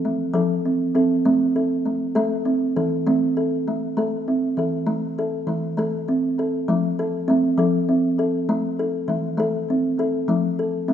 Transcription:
0.00 0.19 F3 medium
0.05 0.35 A3 medium
0.34 0.84 F3 medium
0.34 0.65 A4 medium
0.66 0.94 C4 medium
0.95 1.20 C4 medium
0.95 1.26 A4 medium
1.25 1.84 A3 medium
1.25 1.56 C4 medium
1.56 1.86 A4 medium
1.85 2.15 A3 medium
2.15 2.66 A3 medium
2.15 2.46 A4 medium
2.45 2.76 C4 medium
2.76 3.01 E3 medium
2.76 3.07 A4 medium
3.07 3.66 A3 medium
3.07 3.37 C4 medium
3.37 3.67 A4 medium
3.68 3.96 A3 medium
3.97 4.47 A3 medium
3.97 4.28 A4 medium
4.28 4.58 C4 medium
4.57 4.82 E3 medium
4.57 4.88 A4 medium
4.87 5.36 A3 medium
5.19 5.48 A4 medium
5.47 5.72 E3 medium
5.47 5.76 A3 medium
5.77 6.02 A3 medium
5.77 6.08 A4 medium
6.08 6.38 C4 medium
6.39 6.69 A4 medium
6.68 7.18 F3 medium
6.68 6.99 A3 medium
6.99 7.29 A4 medium
7.28 7.59 A3 medium
7.28 7.53 C4 medium
7.58 7.83 F3 medium
7.58 7.89 A4 medium
7.89 8.19 C4 medium
8.19 8.49 A4 medium
8.49 8.98 A3 medium
8.79 9.09 A4 medium
9.08 9.33 E3 medium
9.08 9.36 A3 medium
9.38 9.63 A3 medium
9.38 9.69 A4 medium
9.70 9.99 C4 medium
9.99 10.29 A4 medium
10.28 10.78 F3 medium
10.28 10.59 A3 medium
10.59 10.89 A4 medium
10.88 10.93 A3 medium
10.88 10.93 C4 medium

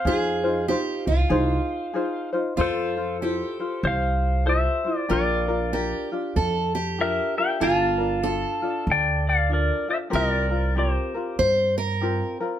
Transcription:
0.00 2.30 C5 medium
0.00 2.30 F5 medium
0.05 0.71 F2 medium
0.05 0.44 D#4 medium
0.05 0.43 F4 medium
0.05 0.44 G#4 medium
0.05 0.68 G#4 medium
0.05 0.42 C5 medium
0.44 0.67 D#4 soft
0.44 0.68 F4 soft
0.44 0.68 C5 medium
0.68 1.29 D#4 medium
0.68 1.30 F4 medium
0.68 1.07 G4 medium
0.68 1.31 C5 medium
1.07 1.23 C2 medium
1.07 2.29 F4 medium
1.29 1.56 C2 loud
1.29 1.93 D#4 medium
1.29 1.95 F4 medium
1.29 1.92 G#4 medium
1.29 1.95 C5 medium
1.93 2.33 D#4 medium
1.93 2.33 F4 medium
1.93 2.33 G#4 medium
1.93 2.31 C5 medium
2.33 2.57 D#4 soft
2.33 2.56 F4 medium
2.33 2.56 C5 medium
2.56 3.40 F2 medium
2.56 3.16 F4 medium
2.56 2.96 F4 medium
2.56 2.96 A4 medium
2.56 2.96 C5 medium
2.61 3.81 A4 medium
2.61 3.84 C5 medium
2.97 3.21 F4 soft
2.97 3.21 C5 medium
3.21 3.60 E4 medium
3.21 3.59 F4 medium
3.21 5.16 G4 medium
3.21 3.60 A4 medium
3.21 3.58 C5 medium
3.60 4.47 F4 medium
3.60 4.47 C5 medium
3.83 4.65 C2 medium
3.83 4.43 C5 medium
3.83 4.49 F5 loud
4.45 4.85 E4 medium
4.45 4.84 F4 medium
4.45 4.85 A4 medium
4.45 5.06 C5 medium
4.45 4.83 C5 medium
4.45 4.97 E5 loud
4.84 5.09 E4 soft
4.84 5.08 F4 soft
4.84 5.08 C5 medium
4.97 5.13 D5 loud
5.09 5.92 A#1 medium
5.09 5.48 D4 medium
5.09 5.48 F4 medium
5.09 5.74 F4 medium
5.09 5.48 G4 medium
5.09 5.47 A#4 medium
5.09 6.08 A#4 medium
5.13 6.09 D5 medium
5.48 5.72 D4 soft
5.48 5.73 F4 soft
5.48 5.72 A#4 medium
5.73 6.12 D4 medium
5.73 6.11 F4 medium
5.73 6.11 G4 medium
5.73 6.36 G4 medium
5.73 6.12 A#4 medium
6.12 6.99 D4 medium
6.12 6.99 F4 medium
6.36 7.18 F2 medium
6.36 6.74 A4 medium
6.75 7.64 G4 medium
6.98 7.38 D4 medium
6.98 7.37 F4 medium
6.98 7.37 G4 medium
6.98 7.36 A#4 medium
6.98 7.37 A#4 medium
6.98 7.37 E5 medium
7.37 7.59 D4 soft
7.37 7.60 F4 soft
7.37 7.60 A#4 soft
7.37 7.60 E5 medium
7.37 7.63 G5 loud
7.60 8.43 G1 medium
7.60 7.99 D4 medium
7.60 8.26 F4 medium
7.60 7.98 F4 medium
7.60 7.98 A4 medium
7.60 7.97 A#4 medium
7.60 8.84 A5 loud
7.64 8.85 F5 medium
7.98 8.22 D4 soft
7.98 8.22 F4 soft
7.98 8.22 A#4 medium
8.22 8.62 D4 medium
8.22 8.61 F4 medium
8.22 8.62 A4 medium
8.22 10.13 A4 medium
8.62 9.48 D4 soft
8.62 9.50 F4 medium
8.87 9.69 D2 medium
8.91 9.26 D5 medium
8.91 9.29 G5 medium
9.29 9.50 D5 medium
9.29 9.53 F5 medium
9.49 9.88 D4 medium
9.49 9.87 F4 medium
9.49 9.88 A#4 medium
9.54 9.90 D5 medium
9.88 10.10 D4 soft
9.88 10.09 F4 medium
9.88 9.97 C5 medium
9.88 9.97 E5 medium
10.10 10.95 C2 medium
10.10 10.50 C4 medium
10.10 10.49 F4 medium
10.10 10.51 G4 medium
10.10 10.48 A#4 medium
10.10 11.35 A#4 medium
10.15 10.73 A#4 medium
10.15 10.79 D5 medium
10.49 10.75 C4 soft
10.49 10.76 F4 soft
10.49 10.75 A#4 medium
10.75 11.15 C4 medium
10.75 11.15 F4 medium
10.75 11.15 G4 medium
10.75 11.36 G4 medium
10.75 11.13 A#4 medium
10.75 11.37 C5 medium
11.14 12.01 C4 soft
11.14 12.02 F4 medium
11.14 12.02 A#4 soft
11.39 12.21 G2 medium
11.39 11.75 C5 medium
11.78 12.37 A#4 medium
12.01 12.41 C4 medium
12.01 12.40 F4 medium
12.01 12.41 G4 medium
12.01 12.39 A#4 medium
12.40 12.59 C4 soft
12.40 12.59 F4 soft
12.40 12.59 A#4 medium

